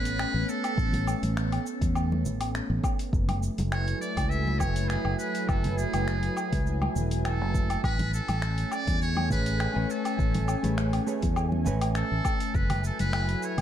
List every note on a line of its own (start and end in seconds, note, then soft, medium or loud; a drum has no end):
0.00 0.25 A1 medium
0.00 3.09 A3 medium
0.00 3.09 B3 medium
0.00 3.09 C#4 medium
0.00 0.51 B4 loud
0.05 open hi-hat soft
0.05 cabasa soft
0.19 finger snap loud
0.19 cabasa soft
0.19 low woodblock medium
0.34 0.43 A1 medium
0.49 1.37 A4 medium
0.49 cabasa medium
0.64 open hi-hat medium
0.64 cabasa soft
0.64 low woodblock medium
0.78 1.13 A1 loud
0.78 kick loud
0.78 cabasa soft
0.93 open hi-hat soft
0.93 high conga medium
0.93 low conga medium
1.07 cabasa medium
1.07 low woodblock medium
1.23 1.57 A1 medium
1.23 open hi-hat medium
1.23 high conga medium
1.23 cabasa soft
1.37 finger snap loud
1.37 cabasa soft
1.52 open hi-hat soft
1.52 low woodblock medium
1.66 cabasa medium
1.81 2.25 E2 medium
1.81 kick medium
1.81 open hi-hat medium
1.81 high conga medium
1.81 cabasa soft
1.95 cabasa soft
1.95 low woodblock medium
2.12 high conga medium
2.25 2.60 A1 medium
2.25 low conga medium
2.25 cabasa medium
2.41 open hi-hat medium
2.41 cabasa soft
2.41 low woodblock medium
2.55 finger snap medium
2.55 cabasa soft
2.70 2.78 A1 medium
2.84 kick loud
2.84 cabasa medium
2.84 low woodblock medium
2.99 open hi-hat soft
2.99 cabasa soft
3.13 3.48 F#1 medium
3.13 7.80 F#3 medium
3.13 7.80 A3 medium
3.13 7.80 E4 medium
3.13 7.80 B4 medium
3.13 7.80 G#5 medium
3.13 kick loud
3.13 cabasa soft
3.29 open hi-hat soft
3.29 high conga medium
3.29 low conga medium
3.29 low woodblock medium
3.43 cabasa medium
3.58 3.93 F#1 medium
3.58 open hi-hat soft
3.58 high conga loud
3.58 cabasa soft
3.72 4.00 C#5 loud
3.72 finger snap medium
3.72 cabasa soft
3.72 low woodblock medium
3.88 open hi-hat soft
4.01 4.31 D5 loud
4.01 cabasa medium
4.17 4.62 C#2 medium
4.17 kick loud
4.17 open hi-hat medium
4.17 high conga medium
4.17 cabasa soft
4.17 low woodblock medium
4.29 4.61 E5 loud
4.29 cabasa soft
4.47 high conga medium
4.59 4.96 F#1 medium
4.59 4.90 C#5 loud
4.59 kick medium
4.59 low conga medium
4.59 cabasa medium
4.59 low woodblock medium
4.76 open hi-hat soft
4.76 cabasa soft
4.89 5.18 G#4 medium
4.89 finger snap loud
4.89 cabasa soft
5.05 5.14 F#1 medium
5.05 low woodblock medium
5.18 5.50 B4 medium
5.18 cabasa medium
5.35 open hi-hat soft
5.35 cabasa soft
5.48 5.84 F#1 medium
5.48 5.79 A4 loud
5.48 kick loud
5.48 cabasa soft
5.48 low woodblock medium
5.64 open hi-hat soft
5.64 high conga medium
5.64 low conga medium
5.77 6.95 G#4 medium
5.77 cabasa medium
5.94 6.28 F#1 medium
5.94 open hi-hat soft
5.94 high conga medium
5.94 cabasa soft
5.94 low woodblock medium
6.08 finger snap loud
6.08 cabasa soft
6.23 open hi-hat soft
6.37 cabasa medium
6.37 low woodblock medium
6.52 6.87 C#2 medium
6.52 kick loud
6.52 open hi-hat medium
6.52 high conga medium
6.52 cabasa soft
6.67 cabasa soft
6.82 high conga medium
6.82 low woodblock medium
6.96 7.41 E1 medium
6.96 low conga medium
6.96 cabasa medium
7.11 open hi-hat medium
7.11 cabasa soft
7.25 7.80 A4 medium
7.25 finger snap loud
7.25 cabasa soft
7.25 low woodblock medium
7.41 7.75 F#1 medium
7.54 kick loud
7.54 cabasa medium
7.70 open hi-hat soft
7.70 cabasa soft
7.70 low woodblock medium
7.83 8.19 A1 medium
7.83 12.50 A3 medium
7.83 12.50 C#4 medium
7.83 8.11 B4 loud
7.83 12.50 G#5 medium
7.83 kick loud
7.83 cabasa soft
7.83 low woodblock medium
7.99 open hi-hat soft
7.99 high conga medium
7.99 low conga medium
8.14 8.75 A4 medium
8.14 cabasa medium
8.28 8.63 A1 medium
8.28 open hi-hat soft
8.28 high conga medium
8.28 cabasa soft
8.28 low woodblock medium
8.42 finger snap medium
8.42 cabasa soft
8.58 open hi-hat soft
8.72 9.01 D5 loud
8.72 cabasa medium
8.72 low woodblock medium
8.87 9.32 E2 medium
8.87 kick loud
8.87 open hi-hat medium
8.87 high conga medium
8.87 cabasa soft
9.02 9.29 C#5 loud
9.02 cabasa soft
9.17 high conga medium
9.17 low woodblock medium
9.30 9.66 A1 medium
9.30 9.72 A3 medium
9.30 9.72 G#4 medium
9.30 9.73 B4 medium
9.30 9.92 B4 loud
9.30 9.73 C#5 medium
9.30 kick medium
9.30 low conga medium
9.30 cabasa medium
9.46 open hi-hat medium
9.46 cabasa soft
9.60 finger snap medium
9.60 cabasa soft
9.60 low woodblock medium
9.74 9.85 A1 medium
9.74 10.59 A3 medium
9.74 10.60 B4 medium
9.74 10.61 C#5 medium
9.74 10.60 G#5 medium
9.90 10.78 A4 medium
9.90 cabasa medium
10.05 open hi-hat soft
10.05 cabasa soft
10.05 low woodblock medium
10.19 10.54 A1 medium
10.19 kick loud
10.19 cabasa soft
10.35 open hi-hat soft
10.35 high conga medium
10.35 low conga medium
10.48 cabasa medium
10.48 low woodblock medium
10.63 10.99 A1 medium
10.63 11.04 A3 medium
10.63 11.04 G#4 medium
10.63 11.04 B4 medium
10.63 11.04 C#5 medium
10.63 open hi-hat medium
10.63 high conga medium
10.63 cabasa soft
10.78 finger snap medium
10.78 cabasa soft
10.93 open hi-hat soft
10.93 low woodblock medium
11.06 11.25 A3 medium
11.06 11.25 G#4 medium
11.06 11.25 B4 medium
11.06 11.26 C#5 medium
11.06 cabasa medium
11.22 11.69 E2 medium
11.22 kick loud
11.22 open hi-hat medium
11.22 high conga medium
11.22 cabasa soft
11.36 cabasa soft
11.36 low woodblock medium
11.52 high conga medium
11.65 12.02 A1 medium
11.65 12.52 A3 medium
11.65 12.53 B4 medium
11.65 12.54 C#5 loud
11.65 12.53 G#5 medium
11.65 low conga medium
11.65 cabasa medium
11.81 open hi-hat medium
11.81 cabasa soft
11.81 low woodblock medium
11.95 12.57 A4 medium
11.95 finger snap medium
11.95 cabasa soft
12.12 12.20 A1 medium
12.25 kick loud
12.25 cabasa medium
12.25 low woodblock medium
12.40 open hi-hat medium
12.40 cabasa soft
12.54 12.90 F#1 loud
12.54 13.61 F#3 medium
12.54 13.61 A3 medium
12.54 13.61 E4 medium
12.54 12.84 B4 loud
12.54 13.61 B4 medium
12.54 13.61 G#5 medium
12.54 kick loud
12.54 cabasa soft
12.70 open hi-hat soft
12.70 high conga medium
12.70 low conga medium
12.70 low woodblock medium
12.84 12.99 A4 medium
12.84 cabasa medium
12.99 13.34 F#1 medium
12.99 13.45 B4 loud
12.99 open hi-hat medium
12.99 high conga medium
12.99 cabasa soft
13.13 finger snap loud
13.13 cabasa soft
13.13 low woodblock medium
13.29 open hi-hat soft
13.43 13.61 C#5 medium
13.43 cabasa medium
13.58 13.61 C#2 medium
13.58 kick medium
13.58 open hi-hat medium
13.58 low woodblock medium